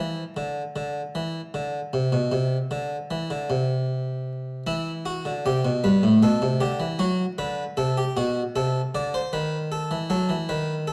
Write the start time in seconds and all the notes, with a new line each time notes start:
Already playing: E3
0.37 D3
0.76 D3
1.15 E3
1.54 D3
1.93 C3
2.12 B2
2.32 C3
2.71 D3
3.11 E3
3.30 D3
3.50 C3
4.67 E3 E4
5.06 F#4
5.25 D3
5.46 C3 G4
5.65 B2
5.84 G2 B4
6.03 A2
6.23 B2 A4
6.42 C3
6.61 D3 G4
6.80 E3
6.99 F#3 F#4
7.38 D3 B4
7.77 C3 A4
7.97 G4
8.17 B2 F#4
8.56 C3 A4
8.95 D3 D5
9.14 C5
9.33 D#3 B4
9.72 A4
9.91 E3
10.10 F#3 A4
10.29 E3
10.49 D#3 B4
10.88 A4